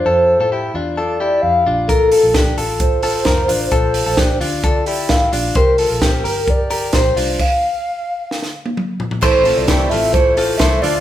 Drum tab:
CC |----------------|----------------|----------------|----------------|
HH |----------------|x-o-x-o-x-o-x-o-|x-o-x-o-x-o-x-o-|x-o-x-o-x-o-x-o-|
SD |----------------|----o-------o---|----o-------o---|----o-------o---|
T1 |----------------|----------------|----------------|----------------|
T2 |----------------|----------------|----------------|----------------|
FT |----------------|----------------|----------------|----------------|
BD |----------------|o---o---o---o---|o---o---o---o---|o---o---o---o---|

CC |x---------------|x---------------|
HH |----------------|--o-x-o-x-o-x-o-|
SD |--------oo------|----o-------o---|
T1 |-----------o----|----------------|
T2 |------------o---|----------------|
FT |--------------oo|----------------|
BD |o---------------|o---o---o---o---|